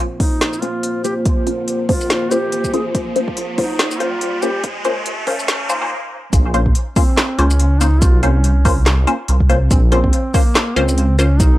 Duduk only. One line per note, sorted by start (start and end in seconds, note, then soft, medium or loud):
0.20 0.63 D#4 medium
0.61 1.04 F4 medium
1.04 1.14 G4 medium
1.90 2.33 F4 medium
2.32 2.73 G4 loud
2.74 2.83 G#4 medium
3.58 4.01 D#4 medium
4.00 4.43 F4 loud
4.42 4.63 G4 loud
5.27 5.71 C#4 medium
5.70 5.91 D#4 loud
6.96 7.40 C4 medium
7.38 7.82 C#4 loud
7.80 8.03 D#4 loud
8.02 8.22 F4 loud
8.22 8.82 C#4 medium
9.71 9.80 C4 medium
9.92 10.36 C4 medium
10.34 10.78 A#3 loud
10.77 11.18 C4 loud
11.19 11.41 C#4 loud
11.40 11.58 D#4 loud